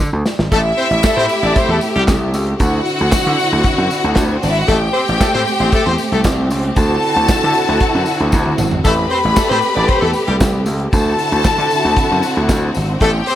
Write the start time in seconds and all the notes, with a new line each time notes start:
0.00 kick, snare
0.13 D2
0.26 snare, tambourine
0.39 G#1, snare
0.50 A1 A3 C4 E4 G4 A4 E5, kick, closed hi-hat, tambourine
0.78 C4 C5, open hi-hat
0.91 A1, closed hi-hat
1.03 A3 A4, kick, snare, clap, closed hi-hat, tambourine
1.17 A2 C4 C5
1.29 open hi-hat, tambourine
1.43 A1 D4 D5, closed hi-hat
1.56 C4 C5, kick, closed hi-hat, tambourine
1.68 E2 A3 A4
1.81 open hi-hat, tambourine
1.96 C2 G3 G4, closed hi-hat
2.07 C2, kick, snare, clap, closed hi-hat, tambourine
2.34 C#2, open hi-hat, tambourine
2.47 closed hi-hat
2.60 D2 D3 E4 F#4 F#5, kick, closed hi-hat, tambourine
2.85 open hi-hat, tambourine
2.99 D2, closed hi-hat
3.12 kick, snare, clap, closed hi-hat, tambourine
3.27 D3
3.38 open hi-hat, tambourine
3.51 D2, closed hi-hat
3.63 kick, closed hi-hat, tambourine
3.78 F#2
3.90 open hi-hat, tambourine
4.03 D2, closed hi-hat
4.15 D2 A3 A4, kick, snare, clap, closed hi-hat, tambourine
4.23 B3 B4
4.32 C4 C5
4.42 G#1 D4 D5, open hi-hat, tambourine
4.49 E4 E5
4.55 F#4 F#5, closed hi-hat
4.67 A1 A3 G4 A4 G5, kick, closed hi-hat, tambourine
4.93 C4 C5, open hi-hat
5.08 A1, closed hi-hat
5.20 A3 A4, kick, snare, clap, closed hi-hat, tambourine
5.34 A2 C4 C5
5.46 open hi-hat, tambourine
5.59 A1 C4 C5, closed hi-hat
5.72 A3 A4, kick, closed hi-hat, tambourine
5.86 E2 C4 C5
5.98 open hi-hat, tambourine
6.12 C2 A3 A4, closed hi-hat
6.24 C2, kick, snare, clap, closed hi-hat, tambourine
6.51 C#2, open hi-hat, tambourine
6.63 closed hi-hat
6.76 D2 D3 E4 F#4 A4 A5, kick, closed hi-hat, tambourine
7.02 open hi-hat
7.16 D2, closed hi-hat
7.28 kick, snare, clap, closed hi-hat, tambourine
7.44 D3
7.54 open hi-hat, tambourine
7.68 D2, snare, closed hi-hat
7.80 kick, closed hi-hat, tambourine
7.95 F#2
8.06 open hi-hat, tambourine
8.20 D2, closed hi-hat
8.32 D2, kick, snare, tambourine
8.46 high tom
8.58 G#1, mid tom, tambourine
8.71 floor tom
8.84 A1 A3 G4 A4 B4 B5, kick, tambourine, splash
9.10 C4 C5, open hi-hat
9.24 A1, closed hi-hat
9.36 A3 A4, kick, snare, clap, closed hi-hat, tambourine
9.49 A2 C4 C5
9.62 open hi-hat, tambourine
9.75 A1 D4 D5, closed hi-hat
9.88 C4 C5, kick, closed hi-hat
10.01 E2 A3 A4
10.13 open hi-hat, tambourine
10.27 C2 G3 G4, closed hi-hat
10.40 C2, kick, snare, clap, closed hi-hat, tambourine
10.66 C#2, open hi-hat, tambourine
10.80 closed hi-hat
10.92 D2 D3 C4 E4 F#4 A4 A5, kick, closed hi-hat, tambourine
11.19 open hi-hat, tambourine
11.32 D2, closed hi-hat
11.44 kick, snare, clap, closed hi-hat, tambourine
11.58 D3
11.70 open hi-hat, tambourine
11.83 D2, closed hi-hat
11.96 kick, closed hi-hat, tambourine
12.11 F#2
12.23 open hi-hat, tambourine
12.36 D2, closed hi-hat
12.49 D2, kick, snare, clap, closed hi-hat, tambourine
12.75 G#1, open hi-hat, tambourine
12.87 closed hi-hat
12.99 A1 A3 G4 A4 G5, kick, closed hi-hat, tambourine
13.26 C4 C5, open hi-hat, tambourine